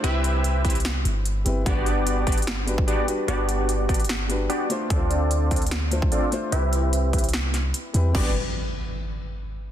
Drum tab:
CC |--------------------------------|--------------------------------|--------------------------------|--------------------------------|
HH |x---x---x---xxxxx---x---x---x---|x---x---x---xxxx----x---x---x---|x---x---x---xxxx----x---x---x---|x---x---x---xxxxx---x---x---x---|
SD |----------------o---------------|----------------o---------------|----------------o---------------|----------------o---------------|
BD |------------o-------------------|o-----------o---------o---------|------------o-------------------|o-----------o---------o---------|

CC |--------------------------------|x-------------------------------|
HH |x---x---x---xxxxx---x---x---x---|--------------------------------|
SD |----------------o---o-----------|--------------------------------|
BD |------------o-------------------|o-------------------------------|